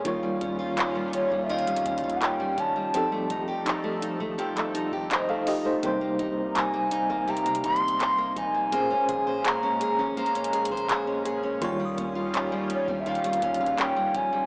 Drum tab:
HH |x-----------x-----------x-----------x-----------x--x--x--x--x---x---x---x-----------x-----------|x-----------x-----------x-----------x-----------x-----x-----x-----------x-----------o-----------|x-----------x-----------x-----------x-----------x--x--x--x--x---x---x---x-----------x-----------|x-----------x-----------x-----------x-----------x--x--x--x--x---x---x---x-----------x-----------|
CP |------------------------x-----------------------------------------------x-----------------------|------------------------x-----------------------------x-----------------x-----------------------|------------------------x-----------------------------------------------x-----------------------|------------------------x-----------------------------------------------x-----------------------|
SD |------------------------------------------------------------------------r-----------------------|------------------------------------------------------------------------r-----------------------|------------------------------------------------------------------------r-----------------------|------------------------------------------------------------------------r-----------------------|
BD |o-----------o-----------------------------o-----------------o-----o-----------------o-----------|------------o-----------------------------o-----------------------o-----------------------------|o-----------o-----------------------------o-----------------o-----o-----------------o-----------|------------o-----------------------------o-----------------------o-----------------------------|

HH |x-----------x-----------x-----------x-----------x--x--x--x--x---x---x---x-----------x-----------|
CP |------------------------x-----------------------------------------------x-----------------------|
SD |------------------------------------------------------------------------r-----------------------|
BD |o-----------o-----------------------------o-----------------o-----o-----------------o-----------|